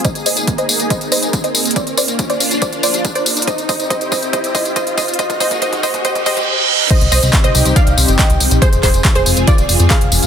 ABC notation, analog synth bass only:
X:1
M:4/4
L:1/16
Q:1/4=140
K:Cm
V:1 name="Analog synth bass" clef=bass
z A,,, A,,, A,,, z A,,, A,,, A,,, z A,,, A,, A,,, z A,,, A,,, E,,, | z B,,, B,,, B,,, z B,,, B,,, B,,, z B,,, B,, B,,, z B,,, B,,, A,,, | z C,, C,, C,, z C,, C,, C,, z C,, z C,, z C,, C,, B,,, | z2 A,,, z4 A,,, z A,,, A,, z4 z |
z C,, C,, C,, z C,, C,, C,, z C,, C,, G,,, z C,, C,, B,,, | z F,,, F,,, F,,, z F,,, F,,, F,,, z F,,, F,,, F,, z F,,, F,,, E,,, |]